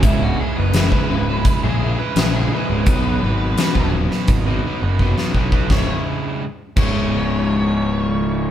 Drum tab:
CC |----------------|----------------|------x---------|
HH |x---x---x---x---|x---x---x-------|----------------|
SD |----o-------o---|----o--o-----o--|o---------------|
BD |o----o--o-------|o----o--o---o-oo|o-----o---------|